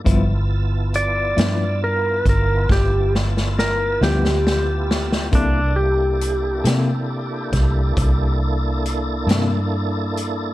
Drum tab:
HH |x---x-x---x-------------|x---x-x---x-x---x-x---x-|
SD |------o-----o-ooo-ooo-oo|------o---o-------o-----|
BD |o---------o-o-----------|o---------o-o-----------|